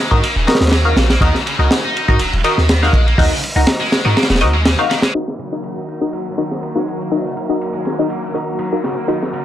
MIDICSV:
0, 0, Header, 1, 7, 480
1, 0, Start_track
1, 0, Tempo, 491803
1, 1185, Time_signature, 4, 2, 24, 8
1, 9222, End_track
2, 0, Start_track
2, 0, Title_t, "Synth stab"
2, 0, Program_c, 0, 62
2, 106, Note_on_c, 0, 66, 77
2, 106, Note_on_c, 0, 70, 78
2, 107, Note_on_c, 0, 63, 83
2, 108, Note_on_c, 0, 75, 95
2, 243, Note_off_c, 0, 66, 0
2, 243, Note_off_c, 0, 70, 0
2, 244, Note_off_c, 0, 63, 0
2, 244, Note_off_c, 0, 75, 0
2, 460, Note_on_c, 0, 63, 88
2, 460, Note_on_c, 0, 75, 101
2, 461, Note_on_c, 0, 70, 80
2, 462, Note_on_c, 0, 66, 80
2, 689, Note_off_c, 0, 63, 0
2, 689, Note_off_c, 0, 70, 0
2, 689, Note_off_c, 0, 75, 0
2, 690, Note_off_c, 0, 66, 0
2, 830, Note_on_c, 0, 63, 78
2, 831, Note_on_c, 0, 66, 77
2, 832, Note_on_c, 0, 70, 73
2, 832, Note_on_c, 0, 77, 91
2, 1056, Note_off_c, 0, 63, 0
2, 1057, Note_off_c, 0, 66, 0
2, 1057, Note_off_c, 0, 70, 0
2, 1057, Note_off_c, 0, 77, 0
2, 1182, Note_on_c, 0, 66, 79
2, 1182, Note_on_c, 0, 75, 95
2, 1183, Note_on_c, 0, 63, 86
2, 1183, Note_on_c, 0, 70, 79
2, 1332, Note_off_c, 0, 66, 0
2, 1332, Note_off_c, 0, 75, 0
2, 1333, Note_off_c, 0, 63, 0
2, 1333, Note_off_c, 0, 70, 0
2, 1554, Note_on_c, 0, 63, 73
2, 1554, Note_on_c, 0, 75, 78
2, 1555, Note_on_c, 0, 66, 69
2, 1555, Note_on_c, 0, 70, 66
2, 2003, Note_off_c, 0, 63, 0
2, 2003, Note_off_c, 0, 70, 0
2, 2003, Note_off_c, 0, 75, 0
2, 2004, Note_off_c, 0, 66, 0
2, 2032, Note_on_c, 0, 70, 77
2, 2032, Note_on_c, 0, 75, 94
2, 2034, Note_on_c, 0, 63, 82
2, 2034, Note_on_c, 0, 66, 79
2, 2166, Note_off_c, 0, 70, 0
2, 2166, Note_off_c, 0, 75, 0
2, 2167, Note_off_c, 0, 63, 0
2, 2167, Note_off_c, 0, 66, 0
2, 2384, Note_on_c, 0, 63, 91
2, 2384, Note_on_c, 0, 70, 83
2, 2385, Note_on_c, 0, 66, 82
2, 2385, Note_on_c, 0, 75, 96
2, 2611, Note_off_c, 0, 63, 0
2, 2611, Note_off_c, 0, 66, 0
2, 2611, Note_off_c, 0, 70, 0
2, 2611, Note_off_c, 0, 75, 0
2, 2756, Note_on_c, 0, 77, 87
2, 2757, Note_on_c, 0, 70, 76
2, 2758, Note_on_c, 0, 63, 81
2, 2758, Note_on_c, 0, 66, 75
2, 2979, Note_off_c, 0, 77, 0
2, 2980, Note_off_c, 0, 63, 0
2, 2980, Note_off_c, 0, 66, 0
2, 2980, Note_off_c, 0, 70, 0
2, 3103, Note_on_c, 0, 75, 94
2, 3104, Note_on_c, 0, 63, 87
2, 3104, Note_on_c, 0, 66, 81
2, 3104, Note_on_c, 0, 70, 79
2, 3253, Note_off_c, 0, 63, 0
2, 3253, Note_off_c, 0, 66, 0
2, 3253, Note_off_c, 0, 70, 0
2, 3253, Note_off_c, 0, 75, 0
2, 3474, Note_on_c, 0, 66, 67
2, 3474, Note_on_c, 0, 70, 69
2, 3474, Note_on_c, 0, 75, 82
2, 3475, Note_on_c, 0, 63, 73
2, 3923, Note_off_c, 0, 66, 0
2, 3923, Note_off_c, 0, 70, 0
2, 3923, Note_off_c, 0, 75, 0
2, 3924, Note_off_c, 0, 63, 0
2, 3950, Note_on_c, 0, 70, 79
2, 3950, Note_on_c, 0, 75, 94
2, 3951, Note_on_c, 0, 63, 85
2, 3951, Note_on_c, 0, 66, 78
2, 4085, Note_off_c, 0, 70, 0
2, 4085, Note_off_c, 0, 75, 0
2, 4086, Note_off_c, 0, 63, 0
2, 4086, Note_off_c, 0, 66, 0
2, 4303, Note_on_c, 0, 70, 88
2, 4303, Note_on_c, 0, 75, 105
2, 4305, Note_on_c, 0, 63, 96
2, 4305, Note_on_c, 0, 66, 88
2, 4453, Note_off_c, 0, 63, 0
2, 4453, Note_off_c, 0, 66, 0
2, 4453, Note_off_c, 0, 70, 0
2, 4453, Note_off_c, 0, 75, 0
2, 4672, Note_on_c, 0, 63, 85
2, 4672, Note_on_c, 0, 77, 92
2, 4673, Note_on_c, 0, 70, 77
2, 4674, Note_on_c, 0, 66, 74
2, 4897, Note_off_c, 0, 63, 0
2, 4897, Note_off_c, 0, 77, 0
2, 4898, Note_off_c, 0, 66, 0
2, 4898, Note_off_c, 0, 70, 0
2, 5025, Note_on_c, 0, 63, 79
2, 5025, Note_on_c, 0, 75, 89
2, 5026, Note_on_c, 0, 66, 73
2, 5026, Note_on_c, 0, 70, 71
2, 5173, Note_off_c, 0, 75, 0
2, 5174, Note_off_c, 0, 63, 0
2, 5174, Note_off_c, 0, 66, 0
2, 5174, Note_off_c, 0, 70, 0
2, 5393, Note_on_c, 0, 63, 68
2, 5394, Note_on_c, 0, 66, 61
2, 5394, Note_on_c, 0, 70, 65
2, 5394, Note_on_c, 0, 75, 76
2, 5843, Note_off_c, 0, 63, 0
2, 5843, Note_off_c, 0, 66, 0
2, 5843, Note_off_c, 0, 70, 0
2, 5843, Note_off_c, 0, 75, 0
2, 5869, Note_on_c, 0, 63, 79
2, 5870, Note_on_c, 0, 66, 72
2, 5871, Note_on_c, 0, 70, 74
2, 5871, Note_on_c, 0, 75, 87
2, 6005, Note_off_c, 0, 63, 0
2, 6005, Note_off_c, 0, 66, 0
2, 6006, Note_off_c, 0, 70, 0
2, 6006, Note_off_c, 0, 75, 0
2, 6224, Note_on_c, 0, 66, 76
2, 6226, Note_on_c, 0, 63, 84
2, 6226, Note_on_c, 0, 70, 76
2, 6226, Note_on_c, 0, 75, 92
2, 6451, Note_off_c, 0, 66, 0
2, 6452, Note_off_c, 0, 63, 0
2, 6452, Note_off_c, 0, 70, 0
2, 6452, Note_off_c, 0, 75, 0
2, 6594, Note_on_c, 0, 63, 78
2, 6594, Note_on_c, 0, 70, 71
2, 6594, Note_on_c, 0, 77, 87
2, 6595, Note_on_c, 0, 66, 72
2, 6818, Note_off_c, 0, 63, 0
2, 6818, Note_off_c, 0, 70, 0
2, 6818, Note_off_c, 0, 77, 0
2, 6819, Note_off_c, 0, 66, 0
2, 6943, Note_on_c, 0, 70, 77
2, 6943, Note_on_c, 0, 75, 88
2, 6944, Note_on_c, 0, 66, 72
2, 6945, Note_on_c, 0, 63, 81
2, 7093, Note_off_c, 0, 63, 0
2, 7093, Note_off_c, 0, 66, 0
2, 7093, Note_off_c, 0, 70, 0
2, 7093, Note_off_c, 0, 75, 0
2, 7314, Note_on_c, 0, 63, 69
2, 7316, Note_on_c, 0, 66, 64
2, 7316, Note_on_c, 0, 70, 64
2, 7316, Note_on_c, 0, 75, 76
2, 7763, Note_off_c, 0, 63, 0
2, 7764, Note_off_c, 0, 66, 0
2, 7764, Note_off_c, 0, 70, 0
2, 7764, Note_off_c, 0, 75, 0
2, 7798, Note_on_c, 0, 66, 77
2, 7798, Note_on_c, 0, 70, 75
2, 7798, Note_on_c, 0, 75, 87
2, 7799, Note_on_c, 0, 63, 80
2, 7929, Note_off_c, 0, 66, 0
2, 7929, Note_off_c, 0, 70, 0
2, 7929, Note_off_c, 0, 75, 0
2, 7930, Note_off_c, 0, 63, 0
2, 8143, Note_on_c, 0, 70, 79
2, 8144, Note_on_c, 0, 66, 78
2, 8144, Note_on_c, 0, 75, 93
2, 8145, Note_on_c, 0, 63, 83
2, 8370, Note_off_c, 0, 70, 0
2, 8371, Note_off_c, 0, 63, 0
2, 8371, Note_off_c, 0, 66, 0
2, 8371, Note_off_c, 0, 75, 0
2, 8514, Note_on_c, 0, 66, 72
2, 8515, Note_on_c, 0, 63, 76
2, 8515, Note_on_c, 0, 70, 70
2, 8516, Note_on_c, 0, 77, 84
2, 8738, Note_off_c, 0, 66, 0
2, 8739, Note_off_c, 0, 63, 0
2, 8739, Note_off_c, 0, 70, 0
2, 8739, Note_off_c, 0, 77, 0
2, 8861, Note_on_c, 0, 63, 81
2, 8862, Note_on_c, 0, 70, 77
2, 8863, Note_on_c, 0, 66, 76
2, 8863, Note_on_c, 0, 75, 90
2, 9012, Note_off_c, 0, 63, 0
2, 9012, Note_off_c, 0, 66, 0
2, 9012, Note_off_c, 0, 70, 0
2, 9012, Note_off_c, 0, 75, 0
2, 9222, End_track
3, 0, Start_track
3, 0, Title_t, "Analog synth pad"
3, 0, Program_c, 1, 89
3, 5032, Note_on_c, 1, 66, 68
3, 5034, Note_on_c, 1, 58, 67
3, 5036, Note_on_c, 1, 70, 81
3, 5037, Note_on_c, 1, 54, 69
3, 5039, Note_on_c, 1, 51, 74
3, 9222, Note_off_c, 1, 51, 0
3, 9222, Note_off_c, 1, 54, 0
3, 9222, Note_off_c, 1, 58, 0
3, 9222, Note_off_c, 1, 66, 0
3, 9222, Note_off_c, 1, 70, 0
3, 9222, End_track
4, 0, Start_track
4, 0, Title_t, "Distorted electric guitar"
4, 0, Program_c, 2, 30
4, 104, Note_on_c, 2, 51, 74
4, 209, Note_off_c, 2, 51, 0
4, 220, Note_on_c, 2, 58, 80
4, 339, Note_off_c, 2, 58, 0
4, 352, Note_on_c, 2, 49, 93
4, 443, Note_off_c, 2, 49, 0
4, 700, Note_on_c, 2, 54, 80
4, 931, Note_off_c, 2, 54, 0
4, 948, Note_on_c, 2, 49, 97
4, 1069, Note_off_c, 2, 49, 0
4, 1073, Note_on_c, 2, 58, 75
4, 1164, Note_off_c, 2, 58, 0
4, 1185, Note_on_c, 2, 51, 77
4, 1308, Note_off_c, 2, 51, 0
4, 1429, Note_on_c, 2, 49, 100
4, 1784, Note_off_c, 2, 49, 0
4, 1798, Note_on_c, 2, 63, 74
4, 2135, Note_off_c, 2, 63, 0
4, 2145, Note_on_c, 2, 54, 80
4, 2268, Note_off_c, 2, 54, 0
4, 2385, Note_on_c, 2, 51, 102
4, 2742, Note_off_c, 2, 51, 0
4, 2762, Note_on_c, 2, 56, 77
4, 2985, Note_off_c, 2, 56, 0
4, 3000, Note_on_c, 2, 58, 73
4, 3087, Note_off_c, 2, 58, 0
4, 3106, Note_on_c, 2, 54, 81
4, 3228, Note_off_c, 2, 54, 0
4, 3240, Note_on_c, 2, 49, 101
4, 3291, Note_off_c, 2, 49, 0
4, 3715, Note_on_c, 2, 56, 76
4, 3942, Note_off_c, 2, 56, 0
4, 3952, Note_on_c, 2, 51, 75
4, 4053, Note_off_c, 2, 51, 0
4, 4059, Note_on_c, 2, 58, 83
4, 4179, Note_off_c, 2, 58, 0
4, 4190, Note_on_c, 2, 49, 96
4, 4282, Note_off_c, 2, 49, 0
4, 4433, Note_on_c, 2, 56, 75
4, 4487, Note_off_c, 2, 56, 0
4, 4546, Note_on_c, 2, 49, 78
4, 4651, Note_off_c, 2, 49, 0
4, 4786, Note_on_c, 2, 51, 74
4, 4908, Note_off_c, 2, 51, 0
4, 4915, Note_on_c, 2, 56, 74
4, 5005, Note_off_c, 2, 56, 0
4, 5029, Note_on_c, 2, 51, 68
4, 5150, Note_off_c, 2, 51, 0
4, 5266, Note_on_c, 2, 49, 89
4, 5622, Note_off_c, 2, 49, 0
4, 5632, Note_on_c, 2, 63, 66
4, 5973, Note_off_c, 2, 63, 0
4, 5985, Note_on_c, 2, 54, 73
4, 6108, Note_off_c, 2, 54, 0
4, 6225, Note_on_c, 2, 51, 89
4, 6582, Note_off_c, 2, 51, 0
4, 6595, Note_on_c, 2, 56, 66
4, 6822, Note_off_c, 2, 56, 0
4, 6832, Note_on_c, 2, 58, 65
4, 6923, Note_off_c, 2, 58, 0
4, 6941, Note_on_c, 2, 54, 71
4, 7066, Note_off_c, 2, 54, 0
4, 7072, Note_on_c, 2, 49, 89
4, 7127, Note_off_c, 2, 49, 0
4, 7553, Note_on_c, 2, 56, 68
4, 7781, Note_off_c, 2, 56, 0
4, 7799, Note_on_c, 2, 51, 67
4, 7896, Note_off_c, 2, 51, 0
4, 7910, Note_on_c, 2, 58, 73
4, 8024, Note_off_c, 2, 58, 0
4, 8035, Note_on_c, 2, 49, 88
4, 8125, Note_off_c, 2, 49, 0
4, 8388, Note_on_c, 2, 54, 73
4, 8615, Note_off_c, 2, 54, 0
4, 8625, Note_on_c, 2, 49, 91
4, 8748, Note_off_c, 2, 49, 0
4, 8751, Note_on_c, 2, 58, 69
4, 8843, Note_off_c, 2, 58, 0
4, 8866, Note_on_c, 2, 51, 71
4, 8988, Note_off_c, 2, 51, 0
4, 9105, Note_on_c, 2, 49, 93
4, 9222, Note_off_c, 2, 49, 0
4, 9222, End_track
5, 0, Start_track
5, 0, Title_t, "808-style bass"
5, 0, Program_c, 3, 38
5, 113, Note_on_c, 3, 44, 82
5, 207, Note_off_c, 3, 44, 0
5, 353, Note_on_c, 3, 27, 92
5, 447, Note_off_c, 3, 27, 0
5, 593, Note_on_c, 3, 39, 93
5, 917, Note_off_c, 3, 39, 0
5, 940, Note_on_c, 3, 34, 94
5, 1148, Note_off_c, 3, 34, 0
5, 1182, Note_on_c, 3, 39, 98
5, 1293, Note_off_c, 3, 39, 0
5, 1552, Note_on_c, 3, 37, 100
5, 1647, Note_off_c, 3, 37, 0
5, 2034, Note_on_c, 3, 44, 83
5, 2127, Note_off_c, 3, 44, 0
5, 2143, Note_on_c, 3, 27, 42
5, 2247, Note_off_c, 3, 27, 0
5, 2279, Note_on_c, 3, 27, 96
5, 2370, Note_off_c, 3, 27, 0
5, 2518, Note_on_c, 3, 39, 96
5, 2839, Note_off_c, 3, 39, 0
5, 2861, Note_on_c, 3, 34, 91
5, 3069, Note_off_c, 3, 34, 0
5, 3106, Note_on_c, 3, 39, 101
5, 3215, Note_off_c, 3, 39, 0
5, 3474, Note_on_c, 3, 37, 104
5, 3568, Note_off_c, 3, 37, 0
5, 3958, Note_on_c, 3, 44, 82
5, 4050, Note_off_c, 3, 44, 0
5, 4197, Note_on_c, 3, 27, 93
5, 4307, Note_on_c, 3, 39, 94
5, 4322, Note_off_c, 3, 27, 0
5, 4643, Note_off_c, 3, 39, 0
5, 9222, End_track
6, 0, Start_track
6, 0, Title_t, "Downlifter"
6, 0, Program_c, 4, 103
6, 5025, Note_on_c, 4, 60, 63
6, 8865, Note_off_c, 4, 60, 0
6, 9222, End_track
7, 0, Start_track
7, 0, Title_t, "Drums"
7, 113, Note_on_c, 9, 36, 84
7, 211, Note_off_c, 9, 36, 0
7, 229, Note_on_c, 9, 51, 91
7, 327, Note_off_c, 9, 51, 0
7, 468, Note_on_c, 9, 51, 68
7, 471, Note_on_c, 9, 38, 82
7, 535, Note_off_c, 9, 38, 0
7, 535, Note_off_c, 9, 51, 0
7, 535, Note_on_c, 9, 38, 88
7, 535, Note_on_c, 9, 51, 66
7, 595, Note_off_c, 9, 38, 0
7, 595, Note_on_c, 9, 38, 84
7, 598, Note_off_c, 9, 51, 0
7, 598, Note_on_c, 9, 51, 70
7, 654, Note_off_c, 9, 51, 0
7, 654, Note_on_c, 9, 51, 63
7, 663, Note_off_c, 9, 38, 0
7, 663, Note_on_c, 9, 38, 80
7, 699, Note_off_c, 9, 38, 0
7, 699, Note_on_c, 9, 38, 110
7, 706, Note_off_c, 9, 51, 0
7, 706, Note_on_c, 9, 51, 77
7, 797, Note_off_c, 9, 38, 0
7, 804, Note_off_c, 9, 51, 0
7, 944, Note_on_c, 9, 38, 106
7, 947, Note_on_c, 9, 51, 78
7, 1041, Note_off_c, 9, 38, 0
7, 1044, Note_off_c, 9, 51, 0
7, 1073, Note_on_c, 9, 38, 108
7, 1076, Note_on_c, 9, 51, 78
7, 1170, Note_off_c, 9, 38, 0
7, 1173, Note_off_c, 9, 51, 0
7, 1179, Note_on_c, 9, 36, 99
7, 1187, Note_on_c, 9, 51, 74
7, 1277, Note_off_c, 9, 36, 0
7, 1284, Note_off_c, 9, 51, 0
7, 1314, Note_on_c, 9, 38, 45
7, 1412, Note_off_c, 9, 38, 0
7, 1432, Note_on_c, 9, 51, 72
7, 1530, Note_off_c, 9, 51, 0
7, 1667, Note_on_c, 9, 38, 114
7, 1675, Note_on_c, 9, 51, 83
7, 1765, Note_off_c, 9, 38, 0
7, 1773, Note_off_c, 9, 51, 0
7, 1919, Note_on_c, 9, 51, 64
7, 2017, Note_off_c, 9, 51, 0
7, 2036, Note_on_c, 9, 36, 89
7, 2133, Note_off_c, 9, 36, 0
7, 2140, Note_on_c, 9, 51, 91
7, 2238, Note_off_c, 9, 51, 0
7, 2276, Note_on_c, 9, 51, 39
7, 2373, Note_off_c, 9, 51, 0
7, 2384, Note_on_c, 9, 51, 66
7, 2482, Note_off_c, 9, 51, 0
7, 2516, Note_on_c, 9, 38, 40
7, 2614, Note_off_c, 9, 38, 0
7, 2624, Note_on_c, 9, 51, 86
7, 2629, Note_on_c, 9, 38, 106
7, 2722, Note_off_c, 9, 51, 0
7, 2727, Note_off_c, 9, 38, 0
7, 2758, Note_on_c, 9, 38, 42
7, 2856, Note_off_c, 9, 38, 0
7, 2861, Note_on_c, 9, 36, 88
7, 2864, Note_on_c, 9, 51, 62
7, 2959, Note_off_c, 9, 36, 0
7, 2962, Note_off_c, 9, 51, 0
7, 3002, Note_on_c, 9, 51, 42
7, 3100, Note_off_c, 9, 51, 0
7, 3105, Note_on_c, 9, 36, 110
7, 3110, Note_on_c, 9, 46, 74
7, 3203, Note_off_c, 9, 36, 0
7, 3208, Note_off_c, 9, 46, 0
7, 3352, Note_on_c, 9, 51, 61
7, 3450, Note_off_c, 9, 51, 0
7, 3580, Note_on_c, 9, 51, 90
7, 3583, Note_on_c, 9, 38, 112
7, 3677, Note_off_c, 9, 51, 0
7, 3681, Note_off_c, 9, 38, 0
7, 3829, Note_on_c, 9, 38, 106
7, 3831, Note_on_c, 9, 51, 74
7, 3927, Note_off_c, 9, 38, 0
7, 3928, Note_off_c, 9, 51, 0
7, 4067, Note_on_c, 9, 51, 63
7, 4070, Note_on_c, 9, 38, 84
7, 4126, Note_off_c, 9, 51, 0
7, 4126, Note_on_c, 9, 51, 67
7, 4130, Note_off_c, 9, 38, 0
7, 4130, Note_on_c, 9, 38, 78
7, 4197, Note_off_c, 9, 38, 0
7, 4197, Note_on_c, 9, 38, 89
7, 4198, Note_off_c, 9, 51, 0
7, 4198, Note_on_c, 9, 51, 59
7, 4250, Note_off_c, 9, 38, 0
7, 4250, Note_on_c, 9, 38, 78
7, 4253, Note_off_c, 9, 51, 0
7, 4253, Note_on_c, 9, 51, 66
7, 4300, Note_off_c, 9, 51, 0
7, 4300, Note_on_c, 9, 51, 61
7, 4348, Note_off_c, 9, 38, 0
7, 4397, Note_off_c, 9, 51, 0
7, 4543, Note_on_c, 9, 38, 121
7, 4543, Note_on_c, 9, 51, 90
7, 4640, Note_off_c, 9, 51, 0
7, 4641, Note_off_c, 9, 38, 0
7, 4790, Note_on_c, 9, 51, 68
7, 4793, Note_on_c, 9, 38, 45
7, 4887, Note_off_c, 9, 51, 0
7, 4891, Note_off_c, 9, 38, 0
7, 4904, Note_on_c, 9, 38, 112
7, 4909, Note_on_c, 9, 51, 81
7, 5002, Note_off_c, 9, 38, 0
7, 5007, Note_off_c, 9, 51, 0
7, 5022, Note_on_c, 9, 51, 70
7, 5120, Note_off_c, 9, 51, 0
7, 5151, Note_on_c, 9, 38, 42
7, 5249, Note_off_c, 9, 38, 0
7, 5263, Note_on_c, 9, 51, 59
7, 5360, Note_off_c, 9, 51, 0
7, 5500, Note_on_c, 9, 51, 83
7, 5598, Note_off_c, 9, 51, 0
7, 5743, Note_on_c, 9, 51, 54
7, 5841, Note_off_c, 9, 51, 0
7, 5982, Note_on_c, 9, 51, 83
7, 6079, Note_off_c, 9, 51, 0
7, 6110, Note_on_c, 9, 51, 42
7, 6208, Note_off_c, 9, 51, 0
7, 6232, Note_on_c, 9, 51, 57
7, 6330, Note_off_c, 9, 51, 0
7, 6357, Note_on_c, 9, 38, 37
7, 6454, Note_off_c, 9, 38, 0
7, 6468, Note_on_c, 9, 51, 80
7, 6566, Note_off_c, 9, 51, 0
7, 6592, Note_on_c, 9, 38, 37
7, 6690, Note_off_c, 9, 38, 0
7, 6716, Note_on_c, 9, 51, 60
7, 6814, Note_off_c, 9, 51, 0
7, 6844, Note_on_c, 9, 51, 36
7, 6942, Note_off_c, 9, 51, 0
7, 6960, Note_on_c, 9, 46, 66
7, 7057, Note_off_c, 9, 46, 0
7, 7191, Note_on_c, 9, 51, 65
7, 7289, Note_off_c, 9, 51, 0
7, 7431, Note_on_c, 9, 51, 80
7, 7529, Note_off_c, 9, 51, 0
7, 7663, Note_on_c, 9, 51, 61
7, 7677, Note_on_c, 9, 38, 49
7, 7760, Note_off_c, 9, 51, 0
7, 7775, Note_off_c, 9, 38, 0
7, 7904, Note_on_c, 9, 51, 70
7, 8002, Note_off_c, 9, 51, 0
7, 8152, Note_on_c, 9, 51, 62
7, 8249, Note_off_c, 9, 51, 0
7, 8382, Note_on_c, 9, 51, 77
7, 8480, Note_off_c, 9, 51, 0
7, 8627, Note_on_c, 9, 38, 45
7, 8631, Note_on_c, 9, 51, 65
7, 8725, Note_off_c, 9, 38, 0
7, 8729, Note_off_c, 9, 51, 0
7, 8867, Note_on_c, 9, 51, 72
7, 8964, Note_off_c, 9, 51, 0
7, 9004, Note_on_c, 9, 38, 42
7, 9101, Note_off_c, 9, 38, 0
7, 9110, Note_on_c, 9, 51, 60
7, 9208, Note_off_c, 9, 51, 0
7, 9222, End_track
0, 0, End_of_file